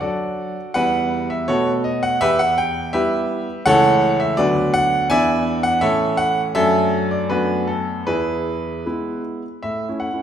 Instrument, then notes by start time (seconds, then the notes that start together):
grand piano
0.01 F#3 D4 F#4 A4 D5
0.74 E2 G3 B3 E4 B4 F#5
1.30 E5
1.48 B2 A3 B3 F#4 A4 C#5
1.84 D#5
2.03 F#5
2.21 E2 G4 B4 E5
2.39 F#5
2.58 G5
2.93 G3 B3 E4 G4 B4 E5
3.66 C#2 E3 A3 E4 A4 C#5 F#5
4.20 E5
4.37 D2 F#3 B3 D4 F#4 B4 D5
4.74 F#5
5.10 E2 E3 B3 D4 D5 E5 G#5
5.63 F#5
5.81 A2 E3 A3 C#4 A4 C#5 E5
6.17 F#5
6.55 F#2 F#3 A3 D4 A4 E5
7.11 D5
7.30 F#2 A3 B3 D4 F#4 B4
7.67 A4
8.07 E2 E4 G#4 B4
8.86 G#3 B3 E4
9.63 A2 E5
9.88 A3 C#4 E4
10.00 F#5
10.13 A3 C#4 E4